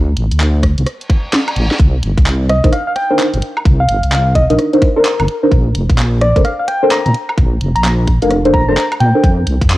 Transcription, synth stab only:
2.64 2.72 D4 medium
2.64 2.72 D#4 medium
2.64 2.72 A#4 medium
2.64 2.72 C5 medium
3.10 3.27 D4 loud
3.10 3.27 D#4 medium
3.10 3.27 A#4 medium
3.10 3.27 C5 loud
4.50 4.70 D4 medium
4.50 4.70 D#4 medium
4.50 4.70 A#4 medium
4.50 4.70 D#5 loud
4.73 4.90 D4 loud
4.73 4.90 D#4 medium
4.73 4.90 A#4 medium
4.73 4.90 C5 loud
4.97 5.05 D4 medium
4.97 5.05 D#4 medium
4.97 5.05 A#4 medium
4.97 5.05 C5 loud
5.43 5.51 D4 medium
5.43 5.51 D#4 medium
5.43 5.51 A#4 medium
5.43 5.51 C5 medium
6.36 6.44 D4 medium
6.36 6.44 A4 medium
6.36 6.44 A#4 medium
6.36 6.44 C5 medium
6.83 6.99 D4 loud
6.83 6.99 A4 loud
6.83 6.99 A#4 medium
6.83 6.99 C5 loud
8.22 8.42 D4 medium
8.22 8.42 A4 medium
8.22 8.42 A#4 medium
8.22 8.42 F5 loud
8.45 8.62 D4 medium
8.45 8.62 A4 medium
8.45 8.62 A#4 medium
8.45 8.62 C5 loud
8.69 8.77 D4 loud
8.69 8.77 A4 medium
8.69 8.77 A#4 medium
8.69 8.77 C5 loud
9.15 9.23 D4 medium
9.15 9.23 A4 medium
9.15 9.23 A#4 medium
9.15 9.23 C5 medium

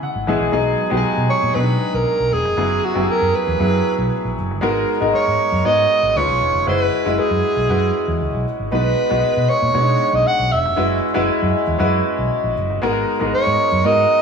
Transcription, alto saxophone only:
1.30 1.56 C#5 loud
1.55 1.96 B4 medium
1.95 2.35 A#4 medium
2.33 2.86 G#4 loud
2.85 3.12 F#4 medium
3.11 3.37 A#4 medium
3.35 4.37 B4 medium
5.14 5.67 C#5 loud
5.66 6.18 D#5 loud
6.16 6.67 C#5 loud
6.68 7.21 B4 loud
7.19 8.47 G#4 medium
8.74 9.51 B4 medium
9.49 10.16 C#5 medium
10.15 10.29 D#5 medium
10.27 10.53 F#5 loud
10.52 11.03 E5 medium
13.34 13.87 C#5 loud
13.86 14.22 D#5 loud

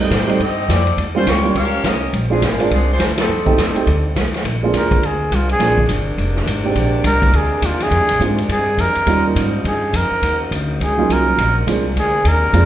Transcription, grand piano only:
0.00 0.10 C4 soft
0.00 0.10 D#4 medium
0.27 0.38 G3 medium
0.27 0.38 A3 medium
0.27 0.38 C4 medium
0.27 0.39 D#4 medium
1.15 1.25 G3 medium
1.15 1.25 A#3 medium
1.15 1.26 C#4 medium
1.15 1.26 F4 medium
1.44 1.54 G3 medium
1.44 1.54 A#3 medium
1.44 1.54 C#4 medium
1.44 1.54 F4 medium
2.30 2.41 G#3 medium
2.30 2.41 C4 medium
2.30 2.41 D4 medium
2.30 2.41 F4 medium
2.59 2.70 G#3 medium
2.59 2.70 C4 medium
2.59 2.70 D4 medium
2.59 2.70 F4 medium
3.45 3.56 A3 medium
3.45 3.56 C4 medium
3.45 3.57 D#4 medium
3.45 3.57 G4 medium
3.75 3.85 A3 medium
3.75 3.86 C4 medium
3.75 3.86 D#4 medium
3.75 3.86 G4 medium
4.63 5.00 G#3 medium
4.63 5.00 A#3 medium
4.63 5.01 C4 medium
4.63 5.01 D4 medium
4.63 5.01 F4 medium
5.60 5.76 G#3 medium
5.60 5.76 A#3 soft
5.60 5.76 C4 soft
5.60 5.76 D4 soft
5.60 5.77 F4 medium
6.65 7.03 G#3 medium
6.65 7.03 A#3 medium
6.65 7.03 C4 medium
6.65 7.03 D4 soft
6.65 7.03 G4 medium
8.20 8.36 G#3 soft
8.20 8.36 A#3 soft
8.20 8.37 C4 soft
8.20 8.37 D4 soft
8.20 8.37 F4 medium
9.07 9.50 G3 medium
9.07 9.50 A#3 medium
9.07 9.50 C#4 soft
9.07 9.51 D#4 soft
9.07 9.51 F4 medium
10.98 11.36 F#3 medium
10.98 11.36 A#3 medium
10.98 11.36 C#4 medium
10.98 11.36 D#4 medium
10.98 11.36 F4 medium
11.67 11.83 G#3 medium
11.67 11.83 A#3 soft
11.67 11.83 C4 soft
11.67 11.83 D4 soft
11.67 11.83 F4 medium
12.53 12.65 G#3 medium
12.53 12.65 A#3 medium
12.53 12.65 C4 soft
12.53 12.65 D4 medium
12.53 12.65 F4 medium

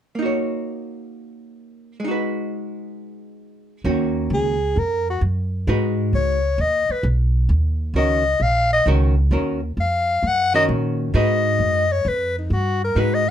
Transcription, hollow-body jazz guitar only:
0.15 1.99 A#3 soft
0.15 2.02 D#4 soft
0.22 2.04 F#4 soft
0.22 2.05 C#5 soft
2.00 3.84 G#3 soft
2.04 3.85 D#4 medium
2.04 3.85 F#4 medium
2.11 3.89 B4 soft
3.85 4.55 D#3 soft
3.85 4.55 A#3 soft
3.85 4.55 C#4 soft
3.85 4.55 F#4 medium
5.68 6.37 G#3 soft
5.68 6.38 D#4 soft
5.68 6.38 F#4 medium
5.68 6.38 B4 medium
7.96 8.23 D#3 soft
7.96 8.23 C#4 soft
7.96 8.23 F#4 medium
7.96 8.23 A#4 soft
8.87 9.14 D#3 medium
8.87 9.14 C#4 medium
8.87 9.14 F#4 medium
8.87 9.15 A#4 medium
9.32 9.59 D#3 soft
9.32 9.59 C#4 medium
9.32 9.60 F#4 soft
9.32 9.60 A#4 soft
10.54 11.11 D#3 medium
10.54 11.11 C#4 medium
10.54 11.12 F#4 medium
10.54 11.12 A#4 medium
11.14 11.84 G#3 medium
11.14 11.84 D#4 medium
11.14 11.84 F#4 medium
11.14 11.85 B4 medium
12.96 13.24 G#3 soft
12.96 13.23 D#4 soft
12.96 13.24 F#4 medium
12.96 13.24 B4 medium

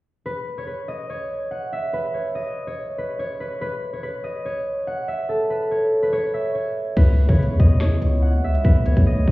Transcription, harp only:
0.26 0.66 B4 medium
0.58 1.09 C#5 medium
0.67 1.93 B4 medium
0.88 1.79 D#5 medium
1.10 2.14 C#5 medium
1.51 3.12 F#5 medium
1.73 2.41 E5 medium
1.93 2.98 B4 medium
2.14 2.67 C#5 medium
2.35 4.13 D#5 medium
2.67 3.19 C#5 medium
2.98 3.40 B4 medium
3.19 3.93 C#5 medium
3.40 3.61 B4 medium
3.61 4.03 B4 loud
3.93 4.45 C#5 medium
4.03 5.50 B4 medium
4.24 5.14 D#5 medium
4.45 5.71 C#5 medium
4.87 6.48 F#5 medium
5.08 6.33 E5 medium
5.29 7.48 A4 medium
5.50 6.02 B4 medium
5.71 6.12 C#5 medium
6.03 6.97 B4 medium
6.13 6.54 C#5 loud
6.34 7.66 E5 medium
6.55 7.29 C#5 medium
6.97 7.38 B4 loud
7.29 7.80 C#5 medium
7.38 8.64 B4 medium
7.60 8.50 D#5 medium
7.81 8.85 C#5 medium
8.22 9.31 F#5 medium
8.44 9.12 E5 medium
8.65 9.31 B4 medium
8.86 9.31 C#5 medium
9.06 9.31 D#5 medium

